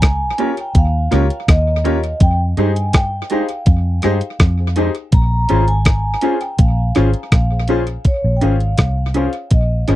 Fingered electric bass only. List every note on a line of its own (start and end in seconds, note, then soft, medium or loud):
0.00 0.30 C#2 medium
0.75 1.07 D#2 loud
1.12 1.29 C#2 medium
1.49 2.12 D#2 medium
2.21 2.53 F2 loud
2.58 3.22 G2 medium
3.67 3.99 F2 loud
4.05 4.20 G2 medium
4.40 4.89 F2 medium
5.13 5.45 A#1 loud
5.51 6.14 G#1 medium
6.59 6.91 A#1 loud
6.97 7.13 G#1 medium
7.33 7.96 A#1 medium
8.24 8.40 A#1 medium
8.42 8.74 G#1 medium
8.79 9.27 C2 medium
9.52 9.84 A#1 loud
9.89 9.96 G#1 medium